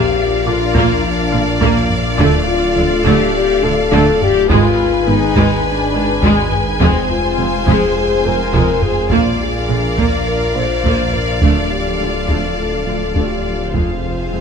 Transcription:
Already playing: A#1 F3 A#3 D4 F4 G4 A#4 D5 F5
0.46 A#1 A#2 D3 D4 F4
0.75 A#1 A#2 A#3, taiko
1.04 D4
1.32 A#1 A#2 D3 F4
1.61 A#1 A#2 A#3, taiko
1.90 taiko low
2.18 D1 D2 D3 A3 D4 A4 F5, taiko
2.47 F4
2.76 D2 D3 F3
3.05 D2 D3 A3 G4, taiko
3.35 G4
3.63 D2 D3 A3 A4
3.92 D2 D3 A3, taiko
4.21 G4, taiko low
4.49 G#1 G#2 D#3 G#3 F4 G#4 B4 G#5, taiko
5.07 G#1 G#2 D#3 B3 D#4
5.36 G#1 G#2 G#3, taiko
5.66 D4
5.94 G#1 G#2 D#3 D#4
6.23 G#1 G#2 G#3, taiko
6.52 taiko low
6.80 F1 F2 F3 G#3 C4 F4 C5, taiko
7.10 F4
7.38 F1 F2 C3 G#3
7.67 F1 F2 F3 G#3 G#4, taiko
7.98 G#4
8.25 F1 F2 C3 C4 A#4
8.53 F1 F2 F3 G#3, taiko
8.82 G#4, taiko low
9.11 A#1 A#2 F3 A#3 D4 F4 A#4 D5 F5, taiko
9.41 G#4
9.69 A#1 A#2 D3 D4
9.98 A#1 A#2 A#3 A#4, taiko
10.27 A#4
10.55 A#1 A#2 D3 F4 C5
10.84 A#1 A#2 A#3, taiko
11.14 A#4, taiko low
11.42 D1 D2 D3 A3 D4 F4 A4, taiko
11.71 G4
12.00 D2 D3 F3
12.29 D2 D3 A3 A4, taiko
12.58 A4
12.87 D2 D3 A3
13.15 D2 D3 A3 G4, taiko
13.73 F1 F2 F3 G#3 C4 F4 G#4 C5 F5, taiko
14.31 F1 F2 C3 G#3

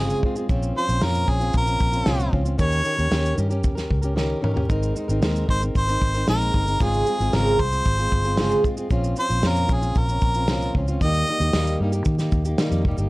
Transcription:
Already playing: G1 G#2 C#3 G#3 C4 G#4
0.00 F4 G#4
0.10 shaker
0.23 G#3 C4 F4 G#4, kick
0.36 G#3 C4 F4 G#4, shaker
0.49 A#1 A#2 F3 C4 C#4 F4, kick, shaker
0.63 shaker
0.75 F3 C4 C#4 F4 C5
0.88 A#1 C4 C#4 F4, shaker
1.01 F2 A#2 F3 C4 C#4 F4 A#4, snare, shaker
1.15 shaker
1.27 A#1 F3 C4 C#4 F4 G#4, kick
1.40 C4 C#4 F4, shaker
1.53 A#1 A#4, kick, shaker
1.66 C4 C#4 F4, shaker
1.80 A#1, kick, shaker
1.92 C4 C#4 F4, shaker
2.06 C2 A#2 F3 C4 C#4 F4, snare, shaker
2.20 shaker
2.31 C#2 F3 C4 C#4 F4, kick
2.45 C4 C#4 F4, shaker
2.58 D#2 D#3 C#4 G4 A#4 C#5, kick, shaker
2.72 shaker
2.83 D#3 C#4 G4 A#4, shaker
2.97 D#2 C#4 G4 A#4, shaker
3.10 D#2 D#3 C#4 G4 A#4, snare, shaker
3.26 shaker
3.36 G2 D#3 C#4 G4 A#4, shaker
3.49 C#4 G4 A#4, shaker
3.64 D#2, kick, shaker
3.75 C#4 G4 A#4, snare, shaker
3.90 C#2, kick
4.02 C#4 G4 A#4, shaker
4.15 D#3 C#4 G4 A#4, snare
4.41 D#3 C#4 G4 A#4, mid tom
4.54 C#4 G4 A#4, floor tom
4.69 G#1 G#3 C4 D#4 A#4, kick, shaker
4.83 shaker
4.95 G#3 C4 D#4 A#4, shaker
5.08 G#1 C4 D#4 A#4, shaker
5.21 D#2 G#3 C4 D#4 A#4, snare, shaker
5.36 shaker
5.47 G#1 G#3 C4 D#4 A#4 C5, kick
5.61 C4 D#4 A#4, shaker
5.75 G#1 C5, kick, shaker
5.88 C4 D#4 A#4, shaker
6.01 G#1, kick
6.14 C4 D#4 A#4, shaker
6.27 A#1 G#3 C4 D#4 A#4, snare, shaker
6.42 shaker
6.53 G1 G#3 C4 D#4 A#4, kick
6.66 C4 D#4 A#4, shaker
6.79 G#1 G#2 C#3 G#3 C4 F4 G#4, kick, shaker
6.94 shaker
7.06 G#3 C4 F4 G#4, shaker
7.19 G#1 G#3 C4 F4 G#4, shaker
7.33 G#1 G#2 C#3 G#3 C4 F4 G#4 A#4, snare, shaker
7.47 shaker
7.59 C2 C5, kick
7.72 G#3 C4 F4 G#4, shaker
7.85 G#1, kick, shaker
7.98 G#3 C4 F4 G#4, shaker
8.12 G1, kick
8.24 G#3 C4 F4 G#4, shaker
8.37 G#2 C#3 G#3 C4 F4 G#4, snare, shaker
8.51 shaker
8.64 G#3 C4 F4 G#4, kick, shaker
8.77 G#3 C4 F4 G#4, shaker
8.90 A#1 A#2 F3 C4 C#4 F4, kick, shaker
9.04 shaker
9.16 F3 C4 C#4 F4 C5, shaker
9.29 A#1 C4 C#4 F4, shaker
9.43 F2 A#2 F3 C4 C#4 F4, snare, shaker
9.48 A#4
9.56 shaker
9.69 A#1 F3 C4 C#4 F4, kick, shaker
9.73 G#4
9.82 C4 C#4 F4, shaker
9.95 A#1 A#4, kick, shaker
10.08 C4 C#4 F4, shaker
10.21 A#1, kick, shaker
10.34 C4 F4, shaker
10.39 C#4
10.48 C2 A#2 F3 C4 C#4 F4, snare, shaker
10.62 shaker
10.75 C#2 F3 C4 C#4 F4, kick
10.88 C4 C#4 F4, shaker
11.01 D#2 D#3 G3 A#3 D#4 G4 D#5, kick, shaker
11.14 shaker
11.27 G3 A#3 D#4, shaker
11.31 G4
11.40 D#2 D#4 G4, shaker
11.44 A#3
11.53 D#2 D#3 G3 A#3 D#4, snare, shaker
11.57 G4
11.67 shaker
11.80 G2 G3 A#3 D#4 G4
11.92 A#3 D#4 G4, shaker
12.05 D#3, kick, shaker
12.19 A#3 D#4 G4, snare, shaker
12.32 D#2, kick, shaker
12.45 A#3 D#4 G4, shaker
12.58 D#3 G3 A#3 D#4 G4, snare, shaker
12.71 F2, shaker
12.85 F1 G3 A#3 D#4 G4, kick
12.98 G1 A#3 D#4 G4, shaker

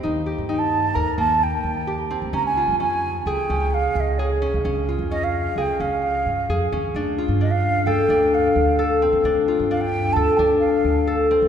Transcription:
Already playing: A#3 C4 G4 A#4
0.03 D#2 D#4
0.26 G4
0.38 G2
0.49 D#4 G5
0.59 A5
0.94 D#2 A#4 A#5
1.18 D#2 A#3 A5
1.43 G5
1.64 D#2
1.87 G4
2.10 C4
2.22 D2
2.33 C#2 C#4 A#5
2.46 G#5
2.57 F4
2.68 F2
2.79 C#4 G#5
3.25 C#2 G#4 G5
3.49 C#2 C#4
3.70 F5 G5
3.95 C#2 F5
4.00 D#5
4.18 G#4 C#5
4.42 C#4
4.54 C#2
4.65 C#2 C#4
4.89 F4
4.99 F2
5.11 C#4 D#5
5.24 F5
5.56 C#2 G#4 G5
5.80 C#2 C#4 F5
6.26 G2
6.49 F2 G#4
6.72 D#2 C#4
6.94 D2 D4
7.18 F4
7.28 G2
7.41 D4 D#5
7.51 F5
7.86 D2 A4 G5
8.09 D2 D4
8.34 F5
8.56 D2
8.79 A4
9.02 C4
9.13 D2
9.24 D2 D4
9.48 F4
9.60 G2
9.71 D4 F5
9.81 G5
10.13 D2 A4 A5
10.37 D2 D4 G5
10.59 F5
10.84 D2
11.07 A4
11.31 C4
11.42 D2

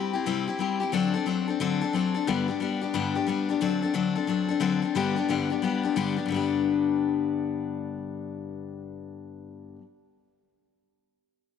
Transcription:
Already playing: G3 C4 E4 G4
0.13 C4 E4 G4
0.26 C3 G3 C4 E4 G4
0.48 C4 E4 G4
0.59 G3 C4 E4 G4
0.80 C4 E4 G4
0.92 D3 F#3 C4 D4 A4
1.14 C4 D4 A4
1.26 F#3 C4 D4 A4
1.48 C4 D4 A4
1.60 D3 F#3 C4 D4 A4
1.81 C4 D4 A4
1.93 F#3 C4 D4 A4
2.14 C4 D4 A4
2.27 G2 D3 G3 B3 D4 G4
2.48 G3 B3 D4 G4
2.60 G3 B3 D4 G4
2.81 G3 B3 D4 G4
2.94 G2 D3 G3 B3 D4 G4
3.15 G3 B3 D4 G4
3.27 G3 B3 D4 G4
3.49 G3 B3 D4 G4
3.61 D3 F#3 C4 D4 A4
3.82 C4 D4 A4
3.94 D3 F#3 C4 D4 A4
4.15 C4 D4 A4
4.27 F#3 C4 D4 A4
4.48 C4 D4 A4
4.60 D3 F#3 C4 D4 A4
4.82 C4 D4 A4
4.95 G2 D3 G3 B3 D4 G4
5.16 G3 B3 D4 G4
5.29 G2 D3 G3 B3 D4 G4
5.50 G3 B3 D4 G4
5.62 G3 B3 D4 G4
5.83 G3 B3 D4 G4
5.96 G2 D3 G3 B3 D4 G4
6.16 G3 B3 D4 G4
6.26 G2 D3
6.30 G3 B3 D4
6.36 G4

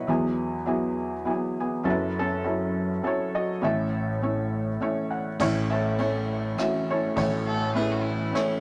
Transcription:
Already playing: F#3 B4
0.07 E2 F#3 B3 E4 G#4
0.66 F#3 B3 E4 G#4
1.25 F#3 B3 E4 G#4
1.30 B3 G#4
1.60 B3 G#4
1.83 F#1 F#2 F#3 C#4 E4 A4
1.90 E4 B4
2.19 C#4 A4
2.44 F#3 C#4 E4 A4
3.03 F#3 C#4 E4 A4 C#5
3.35 F#4 D#5
3.61 A1 A2 A3 C#4 E4 A4 C#5 E5
4.21 A3 C#4 E4 C#5
4.80 A3 C#4 E4 C#5 E5
5.10 F#5
5.39 A1 A2 E3 A3 C#4 E4 C#5, kick, crash
5.70 A4 C#5 E5
5.98 A3 C#4 E4 C#5, ride
6.58 A3 C#4 E4 F#4 E5, cross-stick, ride
6.90 E4 A4 C#5
7.16 A1 A2 A3 C#4 E4 C#5, kick, ride
7.46 A4
7.74 A3 C#4 E4 G#4 B4, ride
7.92 F#4
8.03 E4
8.33 A3 C#4 E4 C#5, cross-stick, ride

